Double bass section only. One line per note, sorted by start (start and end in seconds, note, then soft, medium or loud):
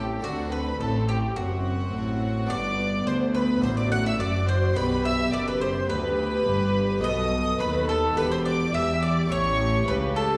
0.00 0.24 A1 medium
0.24 0.80 D2 medium
0.81 1.36 A1 medium
1.37 1.93 F#1 medium
1.94 2.49 A1 medium
2.50 3.07 G1 medium
3.07 3.62 D2 medium
3.64 4.20 A1 medium
4.20 4.77 F#1 medium
4.77 5.33 B1 medium
5.34 5.89 F#1 medium
5.90 6.46 D2 medium
6.46 7.03 G1 medium
7.04 7.60 B1 medium
7.60 8.16 D#2 medium
8.17 8.73 E1 medium
8.73 9.29 E2 medium
9.30 9.86 A1 loud
9.87 10.37 C#2 medium